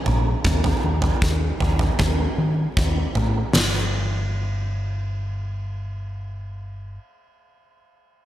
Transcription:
0.06 A#1, floor tom
0.44 D#2, kick, floor tom
0.64 floor tom
0.84 D#2
1.02 floor tom
1.22 D#2, kick
1.60 D#2, floor tom
1.79 floor tom
1.99 D#2, kick, floor tom
2.38 D#3
2.77 D#2, kick, floor tom
3.15 A2, floor tom
3.54 G1, snare, ride bell

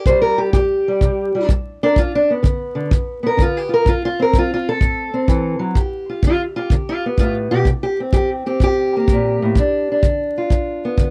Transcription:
0.06 C3 G3 G4 C5, kick
0.22 A#4
0.38 G4
0.53 G3 G4, kick
0.88 G3
1.01 C3, kick
1.35 G3
1.49 G3, kick
1.83 D4 A#4
1.96 G2 F4, kick
2.15 D4
2.30 B3
2.42 D3, kick
2.75 D3
2.91 D3, kick
3.23 B3 A#4
3.37 D3, kick
3.42 F4
3.57 G4
3.69 F4
3.74 A#4
3.85 D3 F4, kick
4.05 F4
4.19 C4 A#4
4.33 F#3, kick
4.38 F4
4.54 F4
4.69 A4
4.81 A2, kick
5.14 C4
5.28 E3, kick
5.59 F#3
5.75 G2 G4, kick
6.09 F4
6.23 D3, kick
6.27 F4
6.56 F4 G4
6.70 D3, kick
6.89 F4
7.06 B3
7.18 A2 F4, kick
7.51 B2 G4
7.65 C3, kick
7.83 G4
8.00 C4
8.13 E3 G4, kick
8.46 C4 G4
8.60 G2 G4, kick
8.97 A#3
9.08 kick
9.12 A#2
9.42 A2
9.55 G2 D4, kick
9.92 D4
10.03 D3, kick
10.38 F4
10.50 G2, kick
10.85 B3
10.98 D3, kick

